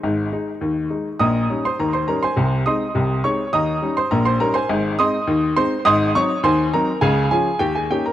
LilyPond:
<<
  \new Staff \with { instrumentName = "Upright piano" } { \time 2/4 \key aes \mixolydian \tempo 4 = 103 <c'' aes'' c'''>4. r8 | \key aes \major <ees'' bes'' ees'''>8. <c'' c'''>16 <bes' bes''>16 <c'' c'''>16 <bes' bes''>16 <c'' aes'' c'''>16~ | <c'' aes'' c'''>8 <ees'' c''' ees'''>4 <des'' des'''>8 | <ees'' bes'' ees'''>8. <c'' c'''>16 <bes' bes''>16 <c'' c'''>16 <bes' bes''>16 <c'' aes'' c'''>16~ |
<c'' aes'' c'''>8 <ees'' c''' ees'''>4 <c'' c'''>8 | <ees'' c''' ees'''>8 <des'' des'''>8 <c'' aes'' c'''>8 <bes' bes''>8 | <aes' f'' aes''>8 <aes' aes''>8 <g' g''>16 <aes' aes''>16 <g' g''>16 <bes' bes''>16 | }
  \new Staff \with { instrumentName = "Upright piano" } { \clef bass \time 2/4 \key aes \mixolydian <aes,, aes,>8 <aes ees'>8 <ees, ees>8 <aes ees'>8 | \key aes \major <bes,, bes,>8 <g des' ees'>8 <ees, ees>8 <g des' ees'>8 | <c, c>8 <aes c' ees'>8 <c, c>8 <aes c' ees'>8 | <ees, ees>8 <g des' ees'>8 <bes,, bes,>8 <g des' ees'>8 |
<aes,, aes,>8 <aes c' ees'>8 <ees, ees>8 <aes c' ees'>8 | <aes,, aes,>8 <ges c' ees'>8 <ees, ees>8 <ges c' ees'>8 | <des, des>8 <f des' f'>8 <ees, ees>8 <bes des' ees'>8 | }
>>